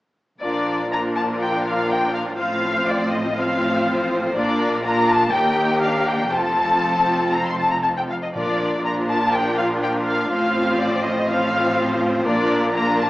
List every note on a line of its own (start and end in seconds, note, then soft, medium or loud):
0.41 2.35 A#1 soft
0.41 2.36 A#2 soft
0.41 0.88 F3 soft
0.41 0.88 D4 soft
0.41 0.88 F4 soft
0.41 0.88 A#4 soft
0.41 0.88 D5 medium
0.91 2.36 F3 soft
0.91 2.37 D4 soft
0.91 2.37 F4 soft
0.91 2.37 A#4 soft
0.91 1.00 A#5 medium
1.16 1.24 A5 medium
1.42 1.65 G5 medium
1.67 1.90 F5 medium
1.90 2.15 G5 medium
2.15 2.23 F5 medium
2.39 4.31 A1 soft
2.39 4.32 A2 medium
2.39 3.35 F3 soft
2.39 3.35 C4 soft
2.39 3.36 F4 soft
2.39 3.35 C5 soft
2.39 2.88 F5 medium
2.88 3.13 D5 medium
3.12 3.37 D#5 medium
3.37 4.33 F3 medium
3.37 4.33 C4 medium
3.37 4.33 F4 soft
3.37 4.33 C5 soft
3.37 4.11 F5 medium
4.34 5.33 A#1 medium
4.34 5.33 A#2 medium
4.34 4.83 A#3 medium
4.34 4.83 D4 medium
4.34 4.83 F4 soft
4.34 4.82 A#4 soft
4.34 4.81 D5 medium
4.83 5.32 A#3 soft
4.83 5.32 D4 soft
4.83 5.32 F4 medium
4.83 5.31 A#4 medium
4.83 5.09 A#5 medium
5.09 5.33 A5 medium
5.32 6.32 D#2 medium
5.32 6.30 A#3 medium
5.32 5.81 D#4 medium
5.32 6.30 G4 medium
5.32 6.30 A#4 medium
5.32 5.82 G5 medium
5.82 6.32 D4 soft
5.82 6.07 F5 medium
6.07 6.32 G5 medium
6.31 8.11 F1 soft
6.31 8.11 F2 medium
6.31 8.11 F3 medium
6.31 8.15 C4 medium
6.31 8.14 F4 soft
6.31 8.14 A4 soft
6.31 7.34 A5 medium
7.33 7.46 A#5 medium
7.46 7.59 C6 medium
7.58 7.71 A5 medium
7.71 7.76 A#5 medium
7.83 7.88 A5 medium
7.97 8.02 G5 soft
8.10 8.15 F5 medium
8.23 8.28 D#5 soft
8.34 10.28 A#1 soft
8.34 10.28 A#2 soft
8.34 9.05 A#2 medium
8.34 8.81 F3 soft
8.34 8.81 D4 soft
8.34 8.81 F4 soft
8.34 8.81 A#4 soft
8.34 8.83 D5 medium
8.84 10.29 F3 soft
8.84 10.29 D4 soft
8.84 10.29 F4 soft
8.84 10.29 A#4 soft
8.84 8.93 A#5 medium
9.09 9.33 A5 medium
9.34 9.59 G5 medium
9.59 9.67 F5 medium
9.83 9.91 G5 medium
10.07 10.31 F5 medium
10.32 12.23 A1 medium
10.32 12.23 A2 medium
10.32 11.28 F3 medium
10.32 11.29 C4 medium
10.32 11.28 F4 medium
10.32 11.28 C5 medium
10.32 10.80 F5 medium
10.81 11.06 D5 medium
11.06 11.30 D#5 medium
11.30 12.25 F3 medium
11.30 12.25 C4 medium
11.30 12.25 F4 medium
11.30 12.25 C5 medium
11.30 12.03 F5 medium
12.26 13.10 A#1 medium
12.26 12.96 A#2 medium
12.26 13.10 A#2 medium
12.26 12.74 A#3 medium
12.26 12.74 D4 medium
12.26 12.74 F4 medium
12.26 12.74 A#4 medium
12.26 12.72 D5 medium
12.75 13.10 A#3 soft
12.75 13.10 D4 soft
12.75 13.10 F4 medium
12.75 13.10 A#4 medium
12.75 13.00 A#5 medium
13.00 13.08 A5 medium